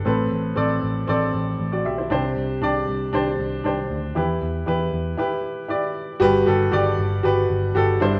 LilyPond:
<<
  \new Staff \with { instrumentName = "Upright piano" } { \time 4/4 \key g \major \tempo 4 = 117 << { r2. r16 <fis' d''>16 <g' e''>16 <e' c''>16~ | <e' c''>16 r2. r8. | r1 | r1 | } \\ { <c' a' b'>4 <c' a' d''>4 <c' a' d''>4 r4 | <d' g' c''>4 <d' g' d''>4 <d' g' c''>4 <d' g' c''>4 | <e' g' b'>4 <e' g' b'>4 <e' g' b'>4 <e' g' d''>4 | <fis' g' b'>8 <fis' g' a'>8 <fis' g' d''>4 <fis' g' b'>4 <fis' g' a'>8 <d' e' c''>8 | } >> }
  \new Staff \with { instrumentName = "Upright piano" } { \clef bass \time 4/4 \key g \major a,4. r2 r8 | c4. r2 r8 | e4. r2 r8 | g,4. r2 g,8 | }
  \new Staff \with { instrumentName = "Picked electric bass" } { \clef bass \time 4/4 \key g \major a,,8 a,,8 a,,8 a,,8 a,,8 a,,8 a,,8 b,,8 | c,8 c,8 c,8 c,8 c,8 c,8 c,8 d,8 | e,8 e,8 e,8 e,8 r2 | g,,8 g,,8 g,,8 g,,8 g,,8 g,,8 g,,8 g,,8 | }
>>